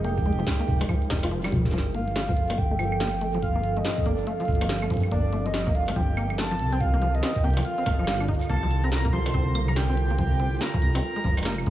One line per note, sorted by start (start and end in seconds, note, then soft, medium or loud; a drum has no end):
0.00 0.44 F1 medium
0.00 1.74 G#3 medium
0.00 1.73 D#4 medium
0.00 1.74 G#4 medium
0.00 11.03 A#4 medium
0.04 0.14 A#3 medium
0.04 1.27 G5 medium
0.04 closed hi-hat loud
0.18 kick loud
0.18 closed hi-hat soft
0.26 0.32 G#3 medium
0.26 closed hi-hat soft
0.33 closed hi-hat soft
0.39 0.42 F3 loud
0.39 closed hi-hat soft
0.39 closed hi-hat medium
0.41 closed hi-hat soft
0.43 snare loud
0.43 closed hi-hat soft
0.47 kick loud
0.47 closed hi-hat soft
0.50 closed hi-hat soft
0.53 closed hi-hat soft
0.57 closed hi-hat soft
0.60 0.66 A#3 medium
0.60 closed hi-hat loud
0.68 0.85 F1 medium
0.68 kick loud
0.68 closed hi-hat soft
0.81 0.85 G#3 medium
0.81 open hi-hat medium
0.81 struck metal medium
0.89 0.95 F3 loud
0.89 kick loud
0.89 closed hi-hat loud
0.89 claves medium
1.02 open hi-hat medium
1.10 1.49 F1 medium
1.10 1.16 D#4 medium
1.10 kick loud
1.10 snare loud
1.10 closed hi-hat medium
1.10 struck metal medium
1.23 1.29 F4 loud
1.23 closed hi-hat soft
1.23 struck metal medium
1.31 1.41 F3 medium
1.31 closed hi-hat loud
1.44 1.54 G3 medium
1.44 snare medium
1.44 claves medium
1.48 closed hi-hat soft
1.52 1.70 F1 loud
1.52 1.65 F3 medium
1.52 kick loud
1.52 closed hi-hat medium
1.52 mid tom medium
1.65 kick loud
1.65 snare soft
1.65 open hi-hat soft
1.71 2.34 G1 loud
1.71 1.79 F3 loud
1.71 6.59 F3 medium
1.71 kick medium
1.71 snare soft
1.71 closed hi-hat medium
1.71 open hi-hat soft
1.78 snare medium
1.78 open hi-hat medium
1.94 2.05 A#3 medium
1.94 6.59 A4 medium
1.94 2.60 F5 medium
1.94 closed hi-hat medium
2.02 7.84 C4 medium
2.08 closed hi-hat medium
2.16 2.22 A3 medium
2.16 snare loud
2.16 closed hi-hat medium
2.29 2.33 F3 loud
2.29 kick loud
2.37 2.54 G1 medium
2.37 closed hi-hat medium
2.50 2.56 A#3 medium
2.50 closed hi-hat medium
2.50 struck metal medium
2.58 3.82 G1 medium
2.58 3.42 G5 loud
2.58 kick loud
2.58 closed hi-hat medium
2.71 2.75 A3 medium
2.79 2.85 F3 loud
2.79 open hi-hat medium
2.79 claves medium
2.92 claves medium
3.00 3.10 A#3 medium
3.00 snare loud
3.00 closed hi-hat medium
3.21 3.27 A3 medium
3.21 closed hi-hat medium
3.34 3.38 F3 loud
3.34 closed hi-hat medium
3.42 3.78 F5 medium
3.42 kick medium
3.42 closed hi-hat medium
3.56 3.62 A#3 medium
3.64 closed hi-hat medium
3.77 3.80 A3 medium
3.77 4.07 D#5 medium
3.77 closed hi-hat medium
3.85 3.91 F3 loud
3.85 snare loud
3.85 closed hi-hat medium
3.89 closed hi-hat medium
3.92 closed hi-hat medium
3.98 kick loud
3.98 closed hi-hat soft
4.03 4.28 D5 medium
4.03 closed hi-hat soft
4.06 4.23 G1 medium
4.06 4.16 A#3 medium
4.06 closed hi-hat medium
4.19 open hi-hat medium
4.27 4.33 A3 medium
4.27 4.90 F5 loud
4.27 closed hi-hat medium
4.40 4.44 F3 loud
4.40 open hi-hat medium
4.45 4.88 G1 medium
4.45 kick loud
4.45 closed hi-hat soft
4.45 open hi-hat soft
4.52 closed hi-hat soft
4.55 closed hi-hat medium
4.61 4.67 A#3 medium
4.61 closed hi-hat medium
4.61 struck metal medium
4.61 claves medium
4.67 snare loud
4.67 closed hi-hat medium
4.69 closed hi-hat medium
4.82 4.86 A3 medium
4.82 claves medium
4.90 5.08 G2 medium
4.90 4.96 F3 loud
4.90 kick medium
4.90 closed hi-hat medium
4.94 kick medium
4.97 kick medium
5.00 kick soft
5.00 open hi-hat medium
5.00 claves soft
5.11 5.72 G1 medium
5.11 5.22 A#3 medium
5.11 5.47 D5 loud
5.11 kick medium
5.11 closed hi-hat medium
5.33 5.39 A3 medium
5.33 closed hi-hat medium
5.46 5.49 F3 loud
5.46 5.76 D#5 loud
5.46 closed hi-hat medium
5.54 snare loud
5.54 closed hi-hat medium
5.61 closed hi-hat medium
5.67 5.73 A#3 medium
5.67 kick loud
5.67 closed hi-hat medium
5.75 5.92 G1 medium
5.75 5.97 F5 medium
5.75 closed hi-hat medium
5.88 5.92 A3 medium
5.88 closed hi-hat soft
5.88 struck metal medium
5.92 6.38 G5 loud
5.92 closed hi-hat soft
5.96 6.61 G1 medium
5.96 6.02 F3 loud
5.96 kick loud
5.96 closed hi-hat medium
6.03 closed hi-hat soft
6.17 6.27 A#3 medium
6.17 open hi-hat medium
6.17 claves medium
6.30 closed hi-hat medium
6.30 claves medium
6.38 6.44 A3 medium
6.38 6.74 A5 loud
6.38 snare loud
6.51 6.55 F3 loud
6.59 7.20 C2 medium
6.59 11.03 D#3 medium
6.59 closed hi-hat medium
6.72 6.79 C4 medium
6.72 6.82 G5 loud
6.72 closed hi-hat medium
6.79 11.70 F4 medium
6.79 7.16 F5 loud
6.79 kick medium
6.79 closed hi-hat medium
6.86 11.03 D3 medium
6.94 6.97 A#3 medium
7.02 7.08 F3 loud
7.02 closed hi-hat medium
7.14 7.45 D#5 loud
7.14 closed hi-hat medium
7.23 7.33 C4 medium
7.23 snare loud
7.23 closed hi-hat medium
7.36 kick loud
7.44 7.61 C2 medium
7.44 7.50 A#3 medium
7.44 7.64 G5 loud
7.44 closed hi-hat soft
7.47 closed hi-hat soft
7.50 closed hi-hat soft
7.54 closed hi-hat medium
7.57 7.61 F3 loud
7.57 closed hi-hat medium
7.57 open hi-hat medium
7.57 struck metal medium
7.59 closed hi-hat medium
7.61 closed hi-hat medium
7.63 8.24 F5 loud
7.63 closed hi-hat medium
7.65 closed hi-hat medium
7.78 7.84 C4 medium
7.78 open hi-hat medium
7.86 8.37 G1 medium
7.86 7.92 A#3 medium
7.86 kick loud
7.86 closed hi-hat medium
7.86 struck metal medium
7.93 closed hi-hat medium
7.99 8.05 F3 medium
7.99 claves soft
8.05 8.20 G3 medium
8.05 snare loud
8.05 closed hi-hat medium
8.05 claves soft
8.12 claves soft
8.20 8.27 D4 medium
8.20 claves medium
8.28 8.34 D#4 loud
8.28 kick medium
8.28 closed hi-hat medium
8.35 closed hi-hat medium
8.41 closed hi-hat medium
8.41 open hi-hat medium
8.41 claves soft
8.45 8.85 A5 loud
8.45 closed hi-hat soft
8.45 claves soft
8.49 9.10 C2 medium
8.49 8.56 A#3 medium
8.49 kick medium
8.49 closed hi-hat medium
8.49 claves soft
8.54 claves soft
8.57 claves soft
8.63 8.66 F3 loud
8.71 closed hi-hat medium
8.84 8.90 C4 medium
8.84 9.12 A#5 loud
8.84 closed hi-hat soft
8.92 snare loud
8.92 closed hi-hat medium
9.05 9.09 A#3 medium
9.05 kick loud
9.13 9.30 C2 medium
9.13 9.19 F3 loud
9.13 9.64 C6 loud
9.13 closed hi-hat medium
9.26 closed hi-hat medium
9.26 struck metal medium
9.34 10.58 C2 medium
9.34 9.44 C4 medium
9.34 kick loud
9.34 closed hi-hat medium
9.55 9.61 A#3 medium
9.55 open hi-hat medium
9.55 claves medium
9.68 9.72 F3 loud
9.68 9.78 A#5 loud
9.68 closed hi-hat medium
9.68 claves medium
9.76 10.18 G5 loud
9.76 snare loud
9.76 closed hi-hat medium
9.89 9.96 C4 medium
9.97 closed hi-hat medium
10.11 10.14 A#3 medium
10.11 closed hi-hat soft
10.18 10.25 F3 loud
10.18 10.62 G5 loud
10.18 kick medium
10.18 closed hi-hat medium
10.40 10.50 C4 medium
10.40 closed hi-hat medium
10.53 closed hi-hat soft
10.55 closed hi-hat soft
10.57 closed hi-hat soft
10.59 10.67 A#3 medium
10.59 10.81 A#5 loud
10.59 snare loud
10.59 closed hi-hat soft
10.61 closed hi-hat medium
10.74 10.78 F3 loud
10.74 kick loud
10.82 10.99 C2 medium
10.82 11.62 A#5 loud
10.82 closed hi-hat medium
10.95 11.01 C4 medium
10.95 open hi-hat medium
10.95 struck metal medium
11.03 11.70 G#3 medium
11.03 closed hi-hat medium
11.16 11.20 G#3 medium
11.16 11.70 D#4 medium
11.16 open hi-hat medium
11.24 11.64 F1 medium
11.24 11.30 F3 loud
11.24 kick loud
11.37 closed hi-hat medium
11.37 struck metal soft
11.37 struck metal medium
11.37 claves medium
11.37 claves soft
11.43 11.70 G4 medium
11.43 snare loud
11.43 closed hi-hat medium
11.43 struck metal medium
11.43 claves soft
11.45 11.55 A#3 medium
11.45 claves soft
11.50 claves soft
11.52 claves soft
11.58 claves medium
11.66 11.70 F2 loud
11.66 11.70 G#3 medium
11.66 kick medium
11.66 closed hi-hat medium